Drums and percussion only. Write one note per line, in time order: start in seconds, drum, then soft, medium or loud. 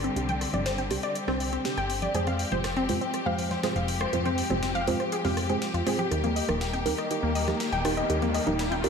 0.04 closed hi-hat soft
0.16 closed hi-hat medium
0.29 closed hi-hat soft
0.29 high conga medium
0.29 low conga medium
0.41 cross-stick soft
0.41 open hi-hat loud
0.54 closed hi-hat soft
0.54 low conga loud
0.66 snare loud
0.66 closed hi-hat loud
0.78 closed hi-hat soft
0.78 high conga medium
0.91 cross-stick soft
0.91 open hi-hat loud
0.91 high conga medium
1.03 closed hi-hat soft
1.15 closed hi-hat medium
1.28 cross-stick medium
1.28 snare soft
1.40 open hi-hat loud
1.53 closed hi-hat soft
1.65 snare loud
1.65 closed hi-hat medium
1.77 cross-stick soft
1.77 closed hi-hat soft
1.90 open hi-hat loud
2.02 closed hi-hat soft
2.02 low conga medium
2.14 closed hi-hat medium
2.27 cross-stick soft
2.27 closed hi-hat soft
2.27 high conga medium
2.27 low conga medium
2.39 open hi-hat loud
2.52 closed hi-hat soft
2.52 low conga medium
2.64 cross-stick medium
2.64 snare loud
2.64 closed hi-hat medium
2.77 closed hi-hat soft
2.77 high conga medium
2.89 open hi-hat loud
2.89 high conga medium
3.01 closed hi-hat soft
3.14 cross-stick soft
3.14 closed hi-hat medium
3.39 open hi-hat loud
3.51 snare soft
3.51 closed hi-hat soft
3.51 low conga medium
3.63 cross-stick soft
3.63 snare loud
3.63 closed hi-hat medium
3.76 closed hi-hat soft
3.88 open hi-hat loud
4.01 cross-stick medium
4.13 closed hi-hat medium
4.25 closed hi-hat soft
4.25 high conga medium
4.25 low conga medium
4.38 open hi-hat loud
4.50 cross-stick soft
4.50 closed hi-hat soft
4.50 low conga loud
4.63 snare loud
4.63 closed hi-hat medium
4.75 closed hi-hat soft
4.75 high conga medium
4.87 open hi-hat loud
4.87 high conga medium
5.00 cross-stick soft
5.00 closed hi-hat soft
5.12 closed hi-hat medium
5.25 snare soft
5.25 open hi-hat medium
5.37 cross-stick medium
5.37 open hi-hat loud
5.50 closed hi-hat soft
5.62 snare loud
5.62 closed hi-hat medium
5.74 closed hi-hat soft
5.87 cross-stick soft
5.87 open hi-hat loud
5.99 closed hi-hat soft
5.99 low conga medium
6.11 cross-stick soft
6.11 closed hi-hat medium
6.24 closed hi-hat soft
6.24 high conga medium
6.24 low conga medium
6.36 open hi-hat loud
6.49 cross-stick medium
6.49 closed hi-hat soft
6.49 low conga medium
6.61 snare loud
6.61 closed hi-hat medium
6.74 closed hi-hat soft
6.74 high conga medium
6.86 open hi-hat loud
6.86 high conga medium
6.98 cross-stick soft
6.98 closed hi-hat soft
7.11 closed hi-hat medium
7.35 open hi-hat loud
7.48 cross-stick soft
7.48 snare soft
7.48 closed hi-hat soft
7.48 low conga medium
7.60 snare loud
7.60 closed hi-hat medium
7.73 closed hi-hat soft
7.85 cross-stick medium
7.85 open hi-hat loud
7.97 closed hi-hat soft
8.10 closed hi-hat medium
8.22 closed hi-hat soft
8.22 high conga medium
8.22 low conga medium
8.34 cross-stick soft
8.34 open hi-hat loud
8.47 closed hi-hat soft
8.47 low conga medium
8.59 snare loud
8.59 closed hi-hat medium
8.72 closed hi-hat soft
8.72 high conga medium
8.84 cross-stick soft
8.84 open hi-hat loud
8.84 high conga medium